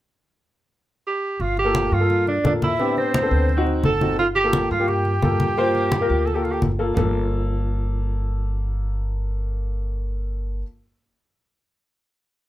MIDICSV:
0, 0, Header, 1, 6, 480
1, 0, Start_track
1, 0, Time_signature, 4, 2, 24, 8
1, 0, Key_signature, -2, "minor"
1, 0, Tempo, 348432
1, 17201, End_track
2, 0, Start_track
2, 0, Title_t, "Flute"
2, 0, Program_c, 0, 73
2, 1949, Note_on_c, 0, 77, 60
2, 2177, Note_off_c, 0, 77, 0
2, 2187, Note_on_c, 0, 79, 75
2, 2671, Note_on_c, 0, 77, 74
2, 2692, Note_off_c, 0, 79, 0
2, 3129, Note_off_c, 0, 77, 0
2, 3137, Note_on_c, 0, 74, 65
2, 3355, Note_off_c, 0, 74, 0
2, 3384, Note_on_c, 0, 74, 67
2, 3466, Note_off_c, 0, 74, 0
2, 3624, Note_on_c, 0, 76, 75
2, 4062, Note_off_c, 0, 76, 0
2, 4102, Note_on_c, 0, 72, 76
2, 4999, Note_off_c, 0, 72, 0
2, 5288, Note_on_c, 0, 81, 85
2, 5733, Note_off_c, 0, 81, 0
2, 5769, Note_on_c, 0, 77, 68
2, 5851, Note_off_c, 0, 77, 0
2, 6013, Note_on_c, 0, 79, 74
2, 6454, Note_off_c, 0, 79, 0
2, 6490, Note_on_c, 0, 77, 73
2, 6722, Note_on_c, 0, 79, 82
2, 6743, Note_off_c, 0, 77, 0
2, 8632, Note_on_c, 0, 81, 55
2, 8653, Note_off_c, 0, 79, 0
2, 8749, Note_on_c, 0, 79, 52
2, 8770, Note_off_c, 0, 81, 0
2, 8867, Note_on_c, 0, 77, 56
2, 8888, Note_off_c, 0, 79, 0
2, 8996, Note_on_c, 0, 79, 59
2, 9017, Note_off_c, 0, 77, 0
2, 9118, Note_off_c, 0, 79, 0
2, 17201, End_track
3, 0, Start_track
3, 0, Title_t, "Grand piano"
3, 0, Program_c, 1, 0
3, 2272, Note_on_c, 1, 58, 77
3, 2280, Note_on_c, 1, 65, 69
3, 2288, Note_on_c, 1, 69, 83
3, 2615, Note_off_c, 1, 58, 0
3, 2619, Note_off_c, 1, 65, 0
3, 2623, Note_off_c, 1, 69, 0
3, 2759, Note_on_c, 1, 58, 56
3, 2762, Note_on_c, 1, 65, 58
3, 2770, Note_on_c, 1, 69, 73
3, 3183, Note_off_c, 1, 58, 0
3, 3184, Note_off_c, 1, 65, 0
3, 3188, Note_off_c, 1, 69, 0
3, 3365, Note_on_c, 1, 58, 66
3, 3371, Note_on_c, 1, 65, 61
3, 3378, Note_on_c, 1, 69, 72
3, 3702, Note_off_c, 1, 58, 0
3, 3704, Note_off_c, 1, 65, 0
3, 3708, Note_off_c, 1, 69, 0
3, 3841, Note_on_c, 1, 59, 72
3, 3850, Note_on_c, 1, 60, 61
3, 3852, Note_on_c, 1, 62, 66
3, 3860, Note_on_c, 1, 67, 71
3, 4264, Note_off_c, 1, 59, 0
3, 4268, Note_off_c, 1, 60, 0
3, 4269, Note_off_c, 1, 62, 0
3, 4273, Note_off_c, 1, 67, 0
3, 4434, Note_on_c, 1, 59, 63
3, 4443, Note_on_c, 1, 60, 60
3, 4446, Note_on_c, 1, 62, 51
3, 4453, Note_on_c, 1, 69, 73
3, 4776, Note_off_c, 1, 59, 0
3, 4781, Note_off_c, 1, 60, 0
3, 4782, Note_off_c, 1, 62, 0
3, 4785, Note_off_c, 1, 69, 0
3, 4915, Note_on_c, 1, 60, 76
3, 4924, Note_on_c, 1, 63, 68
3, 4927, Note_on_c, 1, 66, 87
3, 5340, Note_off_c, 1, 60, 0
3, 5345, Note_off_c, 1, 63, 0
3, 5346, Note_off_c, 1, 66, 0
3, 5524, Note_on_c, 1, 60, 59
3, 5534, Note_on_c, 1, 63, 51
3, 5535, Note_on_c, 1, 66, 69
3, 5764, Note_off_c, 1, 60, 0
3, 5769, Note_off_c, 1, 63, 0
3, 5770, Note_off_c, 1, 66, 0
3, 6120, Note_on_c, 1, 58, 76
3, 6126, Note_on_c, 1, 65, 67
3, 6138, Note_on_c, 1, 69, 83
3, 6458, Note_off_c, 1, 58, 0
3, 6461, Note_off_c, 1, 65, 0
3, 6467, Note_off_c, 1, 69, 0
3, 6607, Note_on_c, 1, 58, 67
3, 6608, Note_on_c, 1, 65, 63
3, 6618, Note_on_c, 1, 67, 69
3, 7024, Note_off_c, 1, 58, 0
3, 7025, Note_off_c, 1, 65, 0
3, 7029, Note_off_c, 1, 67, 0
3, 7199, Note_on_c, 1, 58, 62
3, 7208, Note_on_c, 1, 65, 53
3, 7217, Note_on_c, 1, 69, 72
3, 7536, Note_off_c, 1, 58, 0
3, 7540, Note_off_c, 1, 65, 0
3, 7544, Note_off_c, 1, 69, 0
3, 7681, Note_on_c, 1, 58, 87
3, 7685, Note_on_c, 1, 65, 78
3, 7694, Note_on_c, 1, 72, 94
3, 8100, Note_off_c, 1, 58, 0
3, 8102, Note_off_c, 1, 65, 0
3, 8106, Note_off_c, 1, 72, 0
3, 8280, Note_on_c, 1, 58, 72
3, 8286, Note_on_c, 1, 65, 73
3, 8291, Note_on_c, 1, 70, 83
3, 8615, Note_off_c, 1, 58, 0
3, 8618, Note_off_c, 1, 65, 0
3, 8620, Note_off_c, 1, 70, 0
3, 8751, Note_on_c, 1, 58, 61
3, 8755, Note_on_c, 1, 65, 56
3, 8760, Note_on_c, 1, 69, 73
3, 9173, Note_off_c, 1, 58, 0
3, 9175, Note_off_c, 1, 65, 0
3, 9178, Note_off_c, 1, 69, 0
3, 9355, Note_on_c, 1, 58, 77
3, 9358, Note_on_c, 1, 65, 65
3, 9364, Note_on_c, 1, 69, 72
3, 9547, Note_off_c, 1, 58, 0
3, 9568, Note_on_c, 1, 58, 75
3, 9575, Note_off_c, 1, 65, 0
3, 9596, Note_on_c, 1, 65, 61
3, 9599, Note_off_c, 1, 69, 0
3, 9625, Note_on_c, 1, 69, 79
3, 14596, Note_off_c, 1, 58, 0
3, 14624, Note_off_c, 1, 65, 0
3, 14653, Note_off_c, 1, 69, 0
3, 17201, End_track
4, 0, Start_track
4, 0, Title_t, "Tenor saxophone"
4, 0, Program_c, 2, 66
4, 1472, Note_on_c, 2, 67, 80
4, 1944, Note_on_c, 2, 65, 75
4, 1964, Note_off_c, 2, 67, 0
4, 2174, Note_off_c, 2, 65, 0
4, 2188, Note_on_c, 2, 67, 93
4, 2657, Note_on_c, 2, 65, 87
4, 2678, Note_off_c, 2, 67, 0
4, 3132, Note_off_c, 2, 65, 0
4, 3140, Note_on_c, 2, 62, 79
4, 3357, Note_off_c, 2, 62, 0
4, 3393, Note_on_c, 2, 62, 77
4, 3495, Note_off_c, 2, 62, 0
4, 3628, Note_on_c, 2, 64, 89
4, 4064, Note_off_c, 2, 64, 0
4, 4101, Note_on_c, 2, 60, 85
4, 4998, Note_off_c, 2, 60, 0
4, 5299, Note_on_c, 2, 69, 90
4, 5738, Note_off_c, 2, 69, 0
4, 5769, Note_on_c, 2, 65, 88
4, 5876, Note_off_c, 2, 65, 0
4, 5994, Note_on_c, 2, 67, 102
4, 6444, Note_off_c, 2, 67, 0
4, 6491, Note_on_c, 2, 65, 80
4, 6723, Note_on_c, 2, 67, 84
4, 6743, Note_off_c, 2, 65, 0
4, 8617, Note_on_c, 2, 69, 66
4, 8638, Note_off_c, 2, 67, 0
4, 8738, Note_on_c, 2, 67, 52
4, 8759, Note_off_c, 2, 69, 0
4, 8859, Note_on_c, 2, 65, 69
4, 8880, Note_off_c, 2, 67, 0
4, 8975, Note_on_c, 2, 67, 65
4, 8996, Note_off_c, 2, 65, 0
4, 9108, Note_off_c, 2, 67, 0
4, 17201, End_track
5, 0, Start_track
5, 0, Title_t, "Upright bass"
5, 0, Program_c, 3, 32
5, 1923, Note_on_c, 3, 31, 78
5, 2594, Note_off_c, 3, 31, 0
5, 2641, Note_on_c, 3, 43, 85
5, 3313, Note_off_c, 3, 43, 0
5, 3360, Note_on_c, 3, 45, 78
5, 4484, Note_off_c, 3, 45, 0
5, 4562, Note_on_c, 3, 38, 92
5, 5233, Note_off_c, 3, 38, 0
5, 5282, Note_on_c, 3, 31, 80
5, 6403, Note_off_c, 3, 31, 0
5, 6484, Note_on_c, 3, 43, 92
5, 7152, Note_off_c, 3, 43, 0
5, 7201, Note_on_c, 3, 43, 82
5, 8319, Note_off_c, 3, 43, 0
5, 8399, Note_on_c, 3, 38, 83
5, 9067, Note_off_c, 3, 38, 0
5, 9119, Note_on_c, 3, 31, 89
5, 9541, Note_off_c, 3, 31, 0
5, 9591, Note_on_c, 3, 31, 84
5, 14619, Note_off_c, 3, 31, 0
5, 17201, End_track
6, 0, Start_track
6, 0, Title_t, "Drums"
6, 1927, Note_on_c, 9, 63, 27
6, 2065, Note_off_c, 9, 63, 0
6, 2166, Note_on_c, 9, 63, 29
6, 2304, Note_off_c, 9, 63, 0
6, 2408, Note_on_c, 9, 63, 81
6, 2545, Note_off_c, 9, 63, 0
6, 2892, Note_on_c, 9, 63, 32
6, 3030, Note_off_c, 9, 63, 0
6, 3131, Note_on_c, 9, 63, 32
6, 3269, Note_off_c, 9, 63, 0
6, 3371, Note_on_c, 9, 63, 78
6, 3509, Note_off_c, 9, 63, 0
6, 3612, Note_on_c, 9, 63, 72
6, 3750, Note_off_c, 9, 63, 0
6, 3850, Note_on_c, 9, 63, 28
6, 3988, Note_off_c, 9, 63, 0
6, 4093, Note_on_c, 9, 63, 27
6, 4231, Note_off_c, 9, 63, 0
6, 4331, Note_on_c, 9, 63, 79
6, 4469, Note_off_c, 9, 63, 0
6, 4810, Note_on_c, 9, 63, 28
6, 4947, Note_off_c, 9, 63, 0
6, 5049, Note_on_c, 9, 63, 34
6, 5187, Note_off_c, 9, 63, 0
6, 5283, Note_on_c, 9, 63, 71
6, 5421, Note_off_c, 9, 63, 0
6, 5528, Note_on_c, 9, 63, 60
6, 5666, Note_off_c, 9, 63, 0
6, 5768, Note_on_c, 9, 63, 31
6, 5906, Note_off_c, 9, 63, 0
6, 6006, Note_on_c, 9, 63, 32
6, 6144, Note_off_c, 9, 63, 0
6, 6243, Note_on_c, 9, 63, 88
6, 6380, Note_off_c, 9, 63, 0
6, 6724, Note_on_c, 9, 63, 30
6, 6862, Note_off_c, 9, 63, 0
6, 6956, Note_on_c, 9, 63, 32
6, 7094, Note_off_c, 9, 63, 0
6, 7197, Note_on_c, 9, 63, 78
6, 7335, Note_off_c, 9, 63, 0
6, 7437, Note_on_c, 9, 63, 68
6, 7575, Note_off_c, 9, 63, 0
6, 7681, Note_on_c, 9, 63, 33
6, 7818, Note_off_c, 9, 63, 0
6, 7920, Note_on_c, 9, 63, 28
6, 8058, Note_off_c, 9, 63, 0
6, 8151, Note_on_c, 9, 63, 80
6, 8289, Note_off_c, 9, 63, 0
6, 8643, Note_on_c, 9, 63, 30
6, 8780, Note_off_c, 9, 63, 0
6, 8886, Note_on_c, 9, 63, 32
6, 9023, Note_off_c, 9, 63, 0
6, 9119, Note_on_c, 9, 63, 73
6, 9257, Note_off_c, 9, 63, 0
6, 9601, Note_on_c, 9, 64, 83
6, 9738, Note_off_c, 9, 64, 0
6, 17201, End_track
0, 0, End_of_file